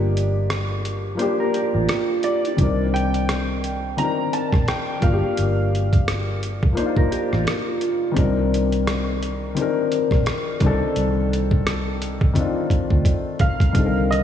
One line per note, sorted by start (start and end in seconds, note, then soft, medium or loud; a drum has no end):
0.00 1.15 G1 medium
0.00 0.72 F3 medium
0.00 0.73 A#3 medium
0.00 0.74 D4 medium
0.00 0.75 G4 loud
0.00 2.61 C5 medium
0.00 2.60 D#5 medium
0.17 closed hi-hat medium
0.50 cross-stick loud
0.50 closed hi-hat medium
0.85 closed hi-hat medium
1.15 2.45 F3 medium
1.15 2.47 A#3 medium
1.19 2.48 D4 medium
1.19 2.49 G4 medium
1.19 1.38 C5 medium
1.19 closed hi-hat medium
1.40 1.53 A#4 medium
1.54 1.74 G4 medium
1.54 closed hi-hat medium
1.74 1.87 A1 medium
1.74 2.55 F4 medium
1.89 cross-stick loud
1.89 closed hi-hat medium
2.23 2.96 D5 medium
2.23 closed hi-hat medium
2.45 closed hi-hat soft
2.56 3.94 C2 medium
2.56 3.86 D#3 medium
2.56 3.87 C4 medium
2.56 kick loud
2.56 closed hi-hat medium
2.61 3.88 D4 medium
2.61 3.89 A#4 medium
2.94 4.01 G5 loud
2.94 closed hi-hat medium
3.14 closed hi-hat soft
3.29 cross-stick loud
3.29 closed hi-hat medium
3.64 closed hi-hat medium
3.97 5.02 D#3 medium
3.97 5.03 C4 medium
3.97 4.31 A#5 loud
3.97 closed hi-hat medium
4.01 5.03 D4 medium
4.01 5.05 A#4 medium
4.33 4.69 A5 medium
4.33 closed hi-hat medium
4.53 4.66 A#1 medium
4.53 kick medium
4.53 cross-stick soft
4.68 5.04 G5 medium
4.68 cross-stick loud
4.68 closed hi-hat medium
5.00 5.21 G1 medium
5.00 6.30 F3 medium
5.00 6.31 A#3 medium
5.00 6.04 F5 medium
5.00 kick loud
5.00 closed hi-hat medium
5.04 6.32 D4 medium
5.04 5.12 F#4 medium
5.13 6.36 G4 medium
5.37 6.74 G1 medium
5.37 closed hi-hat medium
5.75 closed hi-hat medium
5.93 kick medium
5.93 closed hi-hat soft
6.08 cross-stick loud
6.08 closed hi-hat medium
6.43 closed hi-hat medium
6.63 kick loud
6.73 8.03 F3 medium
6.73 8.04 A#3 medium
6.77 8.06 D4 medium
6.77 6.86 D#4 medium
6.77 6.96 C5 medium
6.77 closed hi-hat medium
6.86 8.10 F4 medium
6.97 7.11 A#4 medium
6.97 kick medium
7.12 7.33 G4 medium
7.12 closed hi-hat medium
7.33 7.46 A1 medium
7.33 8.13 F4 medium
7.33 cross-stick soft
7.47 cross-stick loud
7.47 closed hi-hat medium
7.81 closed hi-hat medium
8.12 9.43 D#3 medium
8.12 9.44 C4 medium
8.16 9.52 C2 loud
8.16 9.45 D4 medium
8.16 9.46 A#4 medium
8.16 kick loud
8.16 closed hi-hat medium
8.54 closed hi-hat medium
8.72 closed hi-hat soft
8.87 cross-stick loud
8.87 closed hi-hat medium
9.23 closed hi-hat medium
9.55 10.60 D#3 medium
9.55 10.61 C4 medium
9.55 closed hi-hat medium
9.59 10.62 D4 medium
9.59 10.63 A#4 medium
9.92 closed hi-hat medium
10.11 10.24 A#1 medium
10.11 kick medium
10.11 cross-stick soft
10.26 cross-stick loud
10.26 closed hi-hat medium
10.60 10.79 C2 medium
10.60 10.68 D3 medium
10.60 11.90 C4 medium
10.60 kick loud
10.60 closed hi-hat medium
10.64 11.92 D#3 medium
10.64 11.91 D4 medium
10.64 11.92 A4 loud
10.96 12.32 C2 medium
10.96 closed hi-hat medium
11.33 closed hi-hat medium
11.51 kick medium
11.67 cross-stick loud
11.67 closed hi-hat medium
12.02 closed hi-hat medium
12.21 kick loud
12.33 13.63 D#3 medium
12.33 13.64 C4 medium
12.33 kick medium
12.33 closed hi-hat medium
12.38 13.65 D4 medium
12.38 13.66 F4 medium
12.70 kick medium
12.70 closed hi-hat medium
12.90 13.04 D2 medium
12.90 kick medium
13.05 kick medium
13.05 closed hi-hat medium
13.39 14.12 F5 loud
13.39 kick medium
13.39 closed hi-hat medium
13.60 kick medium
13.60 closed hi-hat soft
13.73 14.23 C2 medium
13.73 14.23 D#3 medium
13.73 14.23 C4 medium
13.73 kick loud
13.73 closed hi-hat medium
13.77 14.23 D3 medium
13.77 13.85 A4 medium
13.86 14.23 A#4 medium
14.11 14.23 D#5 medium
14.11 closed hi-hat medium